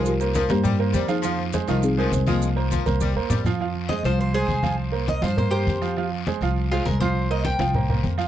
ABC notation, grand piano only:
X:1
M:4/4
L:1/8
Q:1/4=203
K:Fm
V:1 name="Grand piano"
[F,Ff] [B,Bc]2 [B,Bc]2 [B,Bc]2 [F,Ff] | [F,Ff]2 [A,Ac] [F,Ff]2 [A,Ac]2 [F,Ff]- | [F,Ff] [B,Bc]2 [B,Bc]2 [B,Bc]2 [F,Ff] | [F,Ff]2 [A,Ac] [F,Ff]2 [A,Ac]2 [F,Ff]- |
[F,Ff] [B,Bc]2 [F,Ff] [B,Bc] [B,Bc]2 [F,Ff] | [F,Ff]2 [A,Ac] [F,Ff]2 [A,Ac]2 [F,Ff]- | [F,Ff] [B,Bc]2 [F,Ff] [B,Bc] [B,Bc]2 [F,Ff] |]